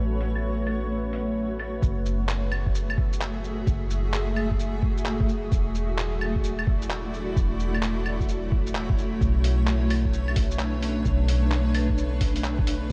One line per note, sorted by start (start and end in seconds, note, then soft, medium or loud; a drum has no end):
0.00 1.81 A1 medium
0.00 1.78 A3 medium
0.00 1.79 F#4 medium
0.00 1.78 B4 medium
0.00 1.78 C#5 medium
0.21 open hi-hat medium
0.36 claves medium
0.67 open hi-hat medium
0.67 claves medium
1.13 open hi-hat medium
1.59 open hi-hat medium
1.59 claves medium
1.82 3.65 F#1 medium
1.82 12.86 A3 medium
1.82 9.17 F#4 medium
1.82 5.48 G#4 medium
1.82 5.49 E5 medium
1.82 kick loud
1.82 shaker medium
2.06 shaker medium
2.29 clap loud
2.29 shaker medium
2.52 claves medium
2.66 kick medium
2.75 shaker medium
2.90 claves medium
2.98 kick loud
3.13 shaker medium
3.21 clap loud
3.21 shaker medium
3.44 shaker soft
3.67 5.50 F#1 medium
3.67 kick loud
3.67 shaker medium
3.90 shaker medium
4.13 clap loud
4.13 shaker medium
4.36 claves medium
4.51 kick medium
4.60 shaker medium
4.83 kick loud
4.97 shaker medium
5.05 clap loud
5.05 shaker medium
5.20 kick loud
5.29 shaker soft
5.52 7.35 E1 medium
5.52 9.18 E4 medium
5.52 7.35 D5 loud
5.52 kick loud
5.52 shaker medium
5.75 shaker medium
5.98 clap loud
5.98 shaker medium
6.21 claves medium
6.36 kick medium
6.44 shaker medium
6.59 claves medium
6.67 kick loud
6.82 shaker medium
6.90 clap loud
6.90 shaker medium
7.14 shaker soft
7.36 9.19 E1 loud
7.36 12.86 C#5 loud
7.36 kick loud
7.36 shaker medium
7.60 shaker medium
7.74 claves medium
7.82 clap loud
7.82 shaker medium
8.06 claves medium
8.20 kick medium
8.20 shaker soft
8.29 shaker medium
8.52 kick loud
8.67 shaker medium
8.75 clap loud
8.75 shaker medium
8.90 kick loud
8.98 shaker soft
9.21 11.04 B1 medium
9.21 12.87 D4 medium
9.21 12.92 B4 medium
9.21 kick loud
9.21 shaker medium
9.44 open hi-hat medium
9.44 shaker soft
9.67 clap loud
9.67 shaker medium
9.90 open hi-hat medium
9.90 claves medium
10.05 kick medium
10.13 shaker medium
10.28 claves medium
10.36 kick loud
10.36 open hi-hat medium
10.51 shaker medium
10.59 clap loud
10.59 shaker medium
10.83 open hi-hat medium
10.83 shaker soft
11.05 12.88 B1 medium
11.05 kick loud
11.05 shaker medium
11.29 open hi-hat medium
11.29 shaker medium
11.51 clap medium
11.51 shaker soft
11.75 open hi-hat medium
11.75 claves medium
11.90 kick medium
11.98 shaker medium
12.21 kick loud
12.21 open hi-hat medium
12.36 open hi-hat soft
12.36 shaker medium
12.44 clap loud
12.44 shaker medium
12.59 kick loud
12.67 open hi-hat medium
12.67 shaker soft